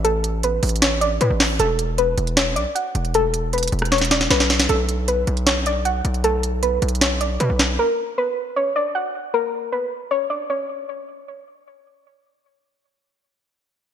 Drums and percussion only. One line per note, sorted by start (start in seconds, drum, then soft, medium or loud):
0.05 closed hi-hat medium
0.24 closed hi-hat medium
0.43 closed hi-hat medium
0.63 closed hi-hat medium
0.63 open hi-hat soft
0.69 closed hi-hat medium
0.76 closed hi-hat medium
0.82 snare loud
0.82 clap medium
0.82 closed hi-hat medium
1.01 closed hi-hat medium
1.21 closed hi-hat medium
1.40 snare medium
1.40 clap medium
1.40 open hi-hat soft
1.60 closed hi-hat medium
1.79 closed hi-hat medium
1.98 closed hi-hat medium
2.18 closed hi-hat medium
2.27 closed hi-hat medium
2.37 snare loud
2.37 clap medium
2.37 closed hi-hat medium
2.56 closed hi-hat medium
2.76 closed hi-hat medium
2.95 closed hi-hat medium
3.05 closed hi-hat soft
3.14 closed hi-hat medium
3.34 closed hi-hat medium
3.53 closed hi-hat medium
3.58 closed hi-hat medium
3.63 closed hi-hat medium
3.68 closed hi-hat medium
3.72 closed hi-hat soft
3.79 cross-stick medium
3.79 closed hi-hat soft
3.85 closed hi-hat soft
3.92 snare medium
3.92 closed hi-hat medium
3.98 snare medium
3.98 closed hi-hat medium
4.05 closed hi-hat medium
4.11 snare medium
4.11 closed hi-hat medium
4.21 snare medium
4.30 snare medium
4.30 closed hi-hat medium
4.40 snare medium
4.50 snare loud
4.50 closed hi-hat soft
4.60 snare loud
4.60 closed hi-hat medium
4.69 closed hi-hat medium
4.89 closed hi-hat medium
5.08 closed hi-hat medium
5.27 closed hi-hat medium
5.37 closed hi-hat soft
5.47 snare loud
5.47 clap medium
5.47 closed hi-hat medium
5.66 closed hi-hat medium
5.85 closed hi-hat medium
6.05 closed hi-hat medium
6.14 closed hi-hat soft
6.24 closed hi-hat medium
6.43 closed hi-hat medium
6.63 closed hi-hat medium
6.82 closed hi-hat medium
6.89 closed hi-hat medium
6.95 closed hi-hat soft
7.01 snare loud
7.01 clap medium
7.01 closed hi-hat medium
7.21 closed hi-hat medium
7.40 closed hi-hat medium
7.59 snare medium
7.59 clap medium
7.59 closed hi-hat medium